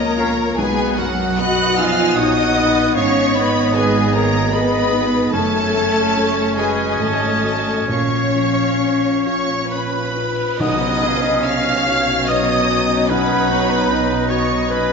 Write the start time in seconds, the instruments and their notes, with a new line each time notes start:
Already playing: felt piano A#1 F2 C#4 F4 C#5, double bass section C#2, french horn section A#3, cello section A#3, violin section A#4 A#5, flute C#5, viola section D#5
0.18 clarinet C#4, felt piano F4, viola section C#5, oboe F5
0.57 double bass section B1, felt piano B1, cello section G#3, french horn section G#3, viola section B3, clarinet B3, violin section G#4 G#5, flute B4, oboe F#5
0.98 felt piano F#2, cello section F#3, french horn section F#3, violin section F#4 F#5, flute A#4
1.37 felt piano B3, cello section F#4, french horn section F#4, viola section D#5, violin section F#5 F#6, flute B5
1.77 french horn section F3, felt piano D#4, cello section F4, violin section F5 F6, flute G#5
2.16 double bass section A#1, cello section D#4, french horn section D#4, felt piano F#4, viola section C#5, violin section D#5 D#6, flute F#5
2.56 felt piano D#4, viola section B4
2.94 double bass section G#1, felt piano G#2, french horn section C#4, cello section C#4, viola section C#5, violin section C#5 C#6, oboe D#5, flute F5
3.34 felt piano D#3, cello section B3, french horn section B3, violin section B4 B5, flute D#5
3.74 french horn section G#3, cello section G#3, felt piano B3, viola section G#4, violin section G#4 G#5, flute B4
4.13 cello section A#3, felt piano D#4, violin section A#4 A#5, french horn section A#4, flute C#5
4.52 cello section B3, french horn section B3, viola section G#4, felt piano G#4, violin section B4 B5, flute D#5
4.93 felt piano D#4
5.32 double bass section F#1, felt piano F#2, french horn section A3, cello section A3, clarinet C#4, viola section A4, violin section A4 A5, oboe C#5, flute C#5
5.74 felt piano C#3
6.16 felt piano C#4, viola section C#5
6.57 french horn section G#3, cello section G#3, felt piano F#4, violin section G#4 G#5, flute B4, viola section D#5
6.99 double bass section G#1, french horn section A3, cello section A3, violin section A4 A5, felt piano A4, flute C#5
7.44 felt piano F#4
7.88 double bass section A#1, felt piano A#2, french horn section C#4, cello section C#4, violin section C#5 C#6, viola section C#5, flute F5
8.35 felt piano F3
8.81 felt piano C#4
9.25 felt piano F4, violin section C#5 C#6, oboe C#5
9.70 violin section B4 B5, oboe B4, felt piano C#5
10.17 felt piano F4
10.59 double bass section B1, felt piano B1, timpani B2, cello section B2, french horn section F#3 C#4, clarinet C#4, viola section D#4 B4, violin section D#5 D#6, oboe D#5, flute F#5, tam-tam
11.02 felt piano B3, flute F5
11.43 viola section C#4 C#5, felt piano C#4, flute D#5, violin section F5 F6, oboe F5
11.85 felt piano F#4, flute C#5
12.27 clarinet B3, viola section D#4, felt piano B4, violin section D#5 D#6, oboe D#5
12.69 clarinet B3, felt piano F#4
13.08 felt piano B1, clarinet C#4, violin section B4 B5, viola section B4, oboe B4, flute F#5
13.49 felt piano B3, clarinet D#4, viola section C#5
13.89 felt piano C#4, clarinet D#4, viola section B4, flute D#5
14.29 clarinet B3, felt piano F#4, violin section C#5 C#6, oboe C#5
14.70 clarinet C#4, viola section D#4 B4, felt piano B4, violin section B4 B5, oboe B4